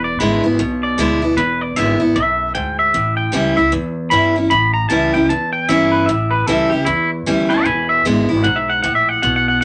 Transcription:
Already playing: upright bass E1, steel-string acoustic guitar E2
0.04 clean electric guitar D5
0.19 upright bass G#1, steel-string acoustic guitar D3 G#3 B3 E4, clean electric guitar B4
0.44 upright bass G#1, steel-string acoustic guitar B3 E4
0.59 upright bass B1, steel-string acoustic guitar B2
0.83 clean electric guitar D5
0.98 upright bass D2, steel-string acoustic guitar D3 G#3 B3 E4
1.22 steel-string acoustic guitar B3 E4
1.37 upright bass E1, steel-string acoustic guitar E2, clean electric guitar B4
1.61 clean electric guitar D5
1.76 upright bass G#1, steel-string acoustic guitar D3 G#3 B3 E4, clean electric guitar E5
2.00 steel-string acoustic guitar B3 E4
2.16 upright bass B1, steel-string acoustic guitar F#2, clean electric guitar E5
2.55 upright bass D2, steel-string acoustic guitar G#2, clean electric guitar G5
2.79 clean electric guitar E5
2.94 upright bass A1, steel-string acoustic guitar A2
3.17 clean electric guitar G5
3.32 upright bass C#2, steel-string acoustic guitar E3 G3 C#4 E4
3.57 upright bass C#2, steel-string acoustic guitar C#4 E4, clean electric guitar E5
3.72 steel-string acoustic guitar E2, upright bass E2
4.10 upright bass G2, steel-string acoustic guitar E3 G3 C#4 E4, clean electric guitar B5
4.36 steel-string acoustic guitar C#4 E4
4.50 upright bass A1, steel-string acoustic guitar A2, clean electric guitar B5
4.74 clean electric guitar A#5
4.89 upright bass C#2, steel-string acoustic guitar E3 G3 C#4 E4, clean electric guitar A5
5.14 upright bass C#2, steel-string acoustic guitar C#4 E4, clean electric guitar G5
5.29 steel-string acoustic guitar E2, upright bass E2, clean electric guitar A5
5.53 clean electric guitar G5
5.69 upright bass G2, steel-string acoustic guitar E3 G3 C#4 E4, clean electric guitar E5
5.92 clean electric guitar B4
6.06 upright bass A1, steel-string acoustic guitar A2, clean electric guitar E5
6.31 clean electric guitar B4
6.46 upright bass C#2, steel-string acoustic guitar E3 G3 C#4 E4, clean electric guitar A4
6.70 upright bass C#2, steel-string acoustic guitar C#4 E4, clean electric guitar G4
6.85 steel-string acoustic guitar E2, upright bass E2, clean electric guitar E4
7.26 upright bass D2, steel-string acoustic guitar E3 G3 C#4 E4
7.49 steel-string acoustic guitar C#4 E4, clean electric guitar C#5 A5
7.64 upright bass E1, steel-string acoustic guitar E2, clean electric guitar G#5 B5
7.89 clean electric guitar E5
8.05 upright bass G#1, steel-string acoustic guitar D3 G#3 B3 E4
8.29 upright bass G#1, steel-string acoustic guitar B3 E4
8.44 upright bass B1, steel-string acoustic guitar G#2, clean electric guitar F#5
8.56 clean electric guitar E5
8.70 clean electric guitar F#5
8.83 upright bass A#1, steel-string acoustic guitar A2, clean electric guitar F#5
8.95 clean electric guitar E5
9.09 clean electric guitar F#5
9.22 upright bass B1, steel-string acoustic guitar B2, clean electric guitar F#5
9.36 clean electric guitar F#5
9.48 clean electric guitar F#5
9.61 clean electric guitar F#5

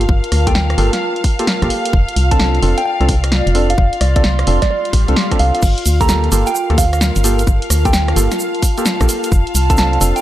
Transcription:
Already playing: ambient pad F4 A#4 A5, violin section F5
0.01 closed hi-hat
0.09 fm bass G1, kick
0.24 closed hi-hat
0.32 fm bass D2, cross-stick, open hi-hat
0.47 synth stab A#3 F4 G4 A4, synth bell G5, kick, closed hi-hat
0.55 synth bell G5, snare
0.70 cross-stick, closed hi-hat
0.78 fm bass G1, synth stab A#3 F4 G4 A4, open hi-hat
0.93 snare, closed hi-hat
1.16 closed hi-hat
1.24 kick, open hi-hat
1.39 synth stab A#3 F4 G4 A4, closed hi-hat
1.47 snare
1.62 fm bass A#1, synth stab A#3 F4 G4 A4, kick, cross-stick, closed hi-hat
1.70 open hi-hat
1.85 closed hi-hat
1.93 fm bass F1, ambient pad F4, kick
2.09 closed hi-hat
2.16 fm bass C2, open hi-hat
2.26 ambient pad D5
2.31 synth stab C4 D4 F4 A4, synth bell A5, kick, closed hi-hat
2.39 synth bell A5, snare
2.55 closed hi-hat
2.62 fm bass F1, synth stab C4 D4 F4 A4, open hi-hat
2.78 synth bell G5, closed hi-hat
2.85 synth bell G5
3.00 fm bass C2, synth stab C4 D4 F4 A4, cross-stick, closed hi-hat
3.09 kick, open hi-hat
3.24 cross-stick, closed hi-hat
3.32 snare
3.47 fm bass F1, closed hi-hat
3.55 synth stab C4 D4 F4 A4, ambient pad C6, open hi-hat
3.70 synth bell F5, closed hi-hat
3.78 fm bass F1, synth bell F5, kick
3.93 closed hi-hat
4.01 fm bass C2, synth bell D5, cross-stick, open hi-hat
4.16 synth stab C4 D4 F4 A4, synth bell D5, kick, closed hi-hat
4.24 snare
4.39 cross-stick, closed hi-hat
4.47 fm bass F1, synth stab C4 D4 F4 A4, open hi-hat
4.62 synth bell D5, kick, snare, closed hi-hat
4.70 synth bell D5, swell
4.85 closed hi-hat
4.93 fm bass A1, kick, open hi-hat
5.08 fm bass C2, synth stab C4 D4 F4 A4, closed hi-hat
5.16 snare
5.31 synth stab C4 D4 F4 A4, kick, cross-stick, closed hi-hat
5.39 fm bass C2, synth bell F5, open hi-hat
5.54 synth bell F5, closed hi-hat
5.62 fm bass G1, violin section F5, kick, crash, shaker
5.78 closed hi-hat
5.86 fm bass D2, open hi-hat, shaker
6.01 synth stab A#3 F4 G4 A4, synth bell A#5, kick, closed hi-hat, shaker
6.09 synth bell A#5, snare, shaker
6.24 ambient pad A#4, closed hi-hat
6.32 fm bass G1, synth stab A#3 F4 G4 A4, open hi-hat, shaker
6.47 synth bell G5, closed hi-hat, shaker
6.55 synth bell G5, shaker
6.70 fm bass D2, synth stab A#3 F4 G4 A4, cross-stick, closed hi-hat
6.78 synth bell F5, kick, open hi-hat, shaker
6.89 ambient pad A5
6.93 synth bell F5, cross-stick, closed hi-hat, shaker
7.01 snare, shaker
7.16 fm bass G1, closed hi-hat, shaker
7.24 synth stab A#3 F4 G4 A4, open hi-hat, shaker
7.39 closed hi-hat, shaker
7.47 fm bass G1, kick, shaker
7.62 closed hi-hat
7.70 fm bass D2, cross-stick, open hi-hat, shaker
7.85 synth stab A#3 F4 G4 A4, synth bell G5, kick, closed hi-hat, shaker
7.93 synth bell G5, snare, shaker
8.08 cross-stick, closed hi-hat
8.16 fm bass G1, synth stab A#3 F4 G4 A4, open hi-hat, shaker
8.31 snare, closed hi-hat, shaker
8.39 shaker
8.55 closed hi-hat
8.63 kick, open hi-hat, shaker
8.78 synth stab A#3 F4 G4 A4, closed hi-hat, shaker
8.86 snare, shaker
9.01 fm bass A#1, synth stab A#3 F4 G4 A4, kick, cross-stick, closed hi-hat, shaker
9.09 open hi-hat, shaker
9.23 closed hi-hat, shaker
9.32 fm bass F1, kick, shaker
9.47 closed hi-hat
9.55 fm bass C2, open hi-hat, shaker
9.60 ambient pad D5
9.70 synth stab C4 D4 F4 A4, synth bell A5, kick, closed hi-hat, shaker
9.77 synth bell A5, snare, shaker
9.93 closed hi-hat
10.01 fm bass F1, synth stab C4 D4 F4 A4, open hi-hat, shaker
10.16 synth bell G5, closed hi-hat, shaker

